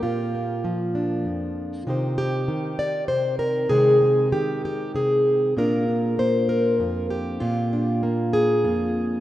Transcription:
0.00 1.25 A#2 medium
0.00 1.86 F4 medium
0.00 0.64 G4 medium
0.35 1.83 A#3 soft
0.64 1.83 F3 medium
0.95 1.83 D4 soft
1.25 1.86 F2 medium
1.87 2.48 C3 medium
1.87 2.47 D#3 soft
1.87 3.68 D#4 soft
1.87 2.17 G4 soft
1.87 2.79 C5 soft
2.18 3.40 G4 loud
2.48 3.70 D#3 medium
2.79 3.08 D5 loud
3.08 3.67 C3 medium
3.08 3.39 C5 medium
3.39 3.70 A#4 loud
3.69 4.32 C3 medium
3.69 4.31 D#3 soft
3.69 4.01 G#3 soft
3.69 4.32 G#4 medium
4.02 5.57 G#3 soft
4.32 5.57 D#3 medium
4.32 4.63 G4 medium
4.65 4.95 G4 medium
4.94 5.53 C3 soft
4.94 5.57 G#4 medium
5.57 6.80 A#2 medium
5.57 6.18 A#3 soft
5.57 5.88 D4 soft
5.57 6.19 F4 soft
5.57 6.48 A#4 loud
5.88 7.38 D4 soft
6.18 7.38 A#3 medium
6.18 6.80 C5 medium
6.49 7.10 A#4 medium
6.80 7.41 F2 medium
6.80 7.39 F4 soft
7.10 8.03 G4 medium
7.40 8.64 A#2 medium
7.40 8.63 F4 medium
7.73 9.20 D4 soft
8.03 9.20 A#3 medium
8.33 9.20 G#4 medium
8.64 9.20 F2 medium
8.64 9.20 F4 soft

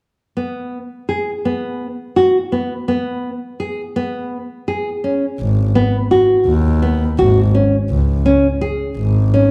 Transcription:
0.37 0.78 B3 medium
1.09 1.29 G#4 soft
1.45 1.86 B3 medium
2.16 2.37 F#4 medium
2.52 2.73 B3 soft
2.88 3.29 B3 medium
3.60 3.80 G#4 soft
3.96 4.37 B3 medium
4.68 4.88 G#4 medium
5.04 5.24 C#4 soft
5.40 5.69 G#1 medium
5.75 5.96 B3 medium
6.11 6.52 F#4 medium
6.46 7.06 D#2 medium
6.82 7.03 B3 medium
7.19 7.48 G#1 medium
7.19 7.39 F#4 medium
7.55 7.75 C#4 soft
7.90 8.20 C#2 medium
8.26 8.46 C#4 medium
8.61 9.02 G#4 medium
8.98 9.51 G#1 medium
9.34 9.51 C#4 medium

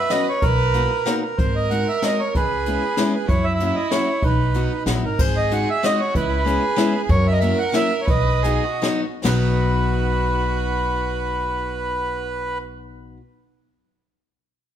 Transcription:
0.00 0.42 B4 loud
0.00 0.11 E5 medium
0.10 0.27 F#3 medium
0.10 0.28 B3 soft
0.10 0.28 C#4 soft
0.10 0.28 F#4 medium
0.10 0.27 D#5 loud
0.10 snare medium
0.10 closed hi-hat soft
0.29 0.44 C#5 medium
0.42 0.84 B1 medium
0.42 1.21 A#4 loud
0.42 1.19 B4 loud
0.42 kick medium
0.42 closed hi-hat medium
0.74 0.91 A#3 medium
0.74 0.91 B3 soft
0.74 0.91 D#4 soft
0.74 0.91 F#4 medium
0.74 closed hi-hat soft
1.05 1.23 A#3 medium
1.05 1.23 B3 medium
1.05 1.23 D#4 medium
1.05 1.23 F#4 medium
1.05 snare medium
1.05 closed hi-hat soft
1.22 1.39 A#4 medium
1.37 1.80 G#1 medium
1.37 2.38 A#4 medium
1.37 1.55 C5 medium
1.37 kick medium
1.37 closed hi-hat soft
1.56 1.70 D#5 medium
1.70 1.87 G#3 soft
1.70 1.88 C4 soft
1.70 1.88 D#4 soft
1.70 1.88 F#4 soft
1.70 1.88 F#5 medium
1.70 closed hi-hat medium
1.88 2.04 E5 medium
2.02 2.19 G#3 medium
2.02 2.19 C4 soft
2.02 2.19 D#4 soft
2.02 2.19 F#4 medium
2.02 2.20 D#5 medium
2.02 snare medium
2.02 closed hi-hat soft
2.20 2.34 C#5 medium
2.35 2.76 C#2 medium
2.35 3.30 G#4 medium
2.35 3.13 B4 medium
2.35 kick medium
2.35 closed hi-hat soft
2.66 2.82 G#3 soft
2.66 2.83 B3 soft
2.66 2.83 C#4 soft
2.66 2.83 E4 medium
2.66 closed hi-hat medium
2.97 3.14 G#3 medium
2.97 3.14 B3 medium
2.97 3.14 C#4 medium
2.97 3.14 E4 medium
2.97 snare medium
2.97 closed hi-hat soft
3.15 3.30 B4 medium
3.28 3.69 F#2 loud
3.28 4.25 E4 loud
3.28 3.45 C#5 medium
3.28 kick medium
3.28 closed hi-hat soft
3.44 3.53 E5 medium
3.54 3.64 E5 medium
3.60 3.77 F#3 medium
3.60 3.76 A#3 soft
3.60 3.77 C#4 medium
3.60 3.77 E4 soft
3.60 closed hi-hat medium
3.65 3.75 E5 medium
3.75 3.91 D#5 medium
3.91 4.08 F#3 medium
3.91 4.08 A#3 soft
3.91 4.08 C#4 medium
3.91 4.08 E4 medium
3.91 4.24 C#5 medium
3.91 snare medium
3.91 closed hi-hat soft
4.22 4.65 B1 medium
4.22 4.89 D#4 medium
4.22 4.83 B4 medium
4.22 kick medium
4.22 closed hi-hat soft
4.54 4.71 F#3 soft
4.54 4.71 B3 soft
4.54 4.72 D#4 soft
4.54 4.72 F#4 medium
4.54 closed hi-hat soft
4.86 5.01 A#1 medium
4.86 5.04 F#3 medium
4.86 5.04 B3 medium
4.86 5.03 D#4 medium
4.86 5.06 E4 medium
4.86 5.04 F#4 medium
4.86 snare medium
4.86 closed hi-hat soft
5.03 5.17 G#1 medium
5.03 5.20 D#4 medium
5.03 5.21 A#4 medium
5.19 5.61 G#1 medium
5.19 5.85 G#4 medium
5.19 5.36 C5 loud
5.19 kick medium
5.19 crash medium
5.37 5.52 D#5 medium
5.51 5.68 G#3 soft
5.51 5.68 C4 soft
5.51 5.68 D#4 soft
5.51 5.68 F#4 medium
5.51 5.69 F#5 medium
5.51 closed hi-hat medium
5.70 5.85 E5 loud
5.83 5.99 G#3 medium
5.83 6.00 C4 medium
5.83 6.00 D#4 soft
5.83 6.15 F#4 medium
5.83 6.00 F#4 medium
5.83 6.01 D#5 loud
5.83 snare medium
5.83 closed hi-hat soft
6.00 6.14 C#5 medium
6.14 6.56 C#2 medium
6.14 6.46 E4 medium
6.14 6.93 B4 loud
6.14 kick medium
6.14 closed hi-hat medium
6.45 6.62 G#3 medium
6.45 6.62 B3 soft
6.45 6.62 C#4 soft
6.45 6.62 E4 medium
6.45 7.11 G#4 medium
6.45 closed hi-hat medium
6.76 6.93 G#3 medium
6.76 6.94 B3 medium
6.76 6.94 C#4 medium
6.76 6.94 E4 medium
6.76 snare medium
6.76 closed hi-hat soft
6.95 7.01 B4 medium
7.09 7.51 F#2 loud
7.09 8.07 A#4 loud
7.09 7.27 C#5 loud
7.09 kick medium
7.09 closed hi-hat soft
7.27 7.33 E5 loud
7.32 7.39 D#5 medium
7.39 7.58 F#3 medium
7.39 7.58 A#3 medium
7.39 7.59 C#4 medium
7.39 7.59 E4 medium
7.39 7.59 E5 loud
7.39 closed hi-hat soft
7.58 7.74 F#5 medium
7.72 7.90 F#3 medium
7.72 7.91 A#3 medium
7.72 7.91 C#4 medium
7.72 7.91 E4 medium
7.72 8.01 E5 loud
7.72 snare medium
7.72 closed hi-hat soft
8.01 8.09 C#5 medium
8.05 8.56 B1 medium
8.05 8.44 B4 loud
8.05 kick medium
8.05 closed hi-hat soft
8.10 9.01 D#5 medium
8.43 8.64 F#3 medium
8.43 8.64 B3 soft
8.43 8.64 D#4 soft
8.43 8.64 F#4 medium
8.43 8.66 G#4 medium
8.43 closed hi-hat medium
8.64 9.04 F#4 medium
8.82 9.03 F#3 medium
8.82 9.04 B3 medium
8.82 9.04 D#4 medium
8.82 9.04 F#4 medium
8.82 snare medium
8.82 closed hi-hat soft
9.24 13.17 B1 medium
9.24 13.17 F#3 medium
9.24 13.18 B3 medium
9.24 13.19 D#4 medium
9.24 12.58 F#4 medium
9.24 13.20 F#4 medium
9.24 12.58 B4 medium
9.24 snare medium
9.24 crash medium

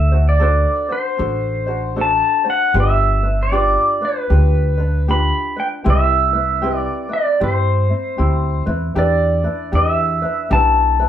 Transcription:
0.00 0.64 D2 medium
0.00 0.12 D4 medium
0.00 0.11 F#4 medium
0.00 0.12 A4 medium
0.00 0.11 C5 medium
0.00 0.24 E5 medium
0.12 0.40 D4 soft
0.12 0.40 F#4 soft
0.12 0.40 C5 soft
0.29 0.93 D5 medium
0.40 0.89 D4 medium
0.40 0.88 F#4 medium
0.40 0.89 A4 medium
0.40 0.88 C5 medium
0.89 1.18 D4 soft
0.89 1.18 F#4 soft
0.89 1.18 C5 soft
0.89 2.01 C5 medium
1.18 2.20 A1 medium
1.18 1.67 D4 medium
1.18 1.67 F#4 medium
1.18 1.67 A4 medium
1.18 1.65 C5 medium
1.67 1.96 D4 soft
1.67 1.96 F#4 soft
1.67 1.96 C5 medium
1.96 2.45 D4 medium
1.96 2.44 F#4 medium
1.96 2.45 A4 medium
1.96 2.43 C5 medium
2.01 2.49 A5 medium
2.44 2.74 D4 soft
2.44 2.74 F#4 soft
2.44 2.74 C5 medium
2.50 2.75 F#5 medium
2.74 3.75 G1 loud
2.74 3.23 D4 medium
2.74 3.23 F4 medium
2.74 3.23 G4 medium
2.74 3.22 B4 medium
2.80 3.42 E5 medium
3.23 3.51 D4 soft
3.23 3.51 F4 soft
3.23 3.52 B4 soft
3.43 4.05 D5 medium
3.52 4.01 D4 medium
3.52 4.01 F4 medium
3.52 4.01 G4 medium
3.52 4.00 B4 medium
4.02 4.29 D4 soft
4.02 4.30 F4 soft
4.02 4.30 B4 soft
4.02 5.13 B4 medium
4.30 5.31 D2 medium
4.30 4.78 D4 medium
4.30 4.77 F4 medium
4.30 4.78 G4 medium
4.30 4.76 B4 medium
4.78 5.07 D4 soft
4.78 5.07 F4 soft
4.78 5.07 B4 medium
5.08 5.56 D4 medium
5.08 5.57 F4 medium
5.08 5.56 G4 medium
5.08 5.55 B4 medium
5.08 5.59 B5 medium
5.56 5.84 D4 soft
5.56 5.85 F4 soft
5.56 5.84 B4 soft
5.56 5.67 G5 medium
5.84 6.86 C2 medium
5.84 6.33 C4 medium
5.84 6.32 E4 medium
5.84 6.33 G4 medium
5.84 6.32 B4 medium
5.90 6.77 E5 medium
6.33 6.61 C4 soft
6.33 6.62 E4 soft
6.33 6.62 B4 soft
6.62 7.10 C4 medium
6.62 7.09 E4 medium
6.62 7.11 G4 medium
6.62 7.08 B4 medium
6.77 7.13 D5 medium
7.09 7.40 C4 soft
7.09 7.40 E4 soft
7.09 7.39 B4 soft
7.13 7.42 D5 medium
7.40 7.91 G2 medium
7.40 7.89 C4 medium
7.40 7.89 E4 medium
7.40 7.89 G4 medium
7.40 8.64 C5 medium
7.90 8.17 C4 soft
7.90 8.18 E4 soft
8.18 8.63 D2 medium
8.18 8.67 C4 medium
8.18 8.66 E4 medium
8.18 8.66 G4 medium
8.66 8.93 E2 medium
8.66 8.96 C4 soft
8.66 8.95 E4 medium
8.66 8.95 B4 medium
8.95 9.46 E2 medium
8.95 9.44 D4 medium
8.95 9.43 E4 medium
8.95 9.44 G4 medium
8.95 9.43 B4 medium
8.95 9.77 D5 medium
9.44 9.72 D4 soft
9.44 9.72 E4 soft
9.44 9.73 B4 soft
9.72 10.23 E2 medium
9.72 10.22 D4 medium
9.72 10.22 E4 medium
9.72 10.21 G4 medium
9.72 10.21 B4 medium
9.72 10.54 E5 medium
10.22 10.50 D4 soft
10.22 10.51 E4 soft
10.22 10.51 B4 medium
10.50 11.09 B1 medium
10.50 10.99 D4 medium
10.50 10.99 E4 medium
10.50 10.99 G4 medium
10.50 10.98 B4 medium
10.50 11.09 A5 medium
11.00 11.09 D4 soft
11.00 11.09 E4 soft
11.00 11.09 B4 medium

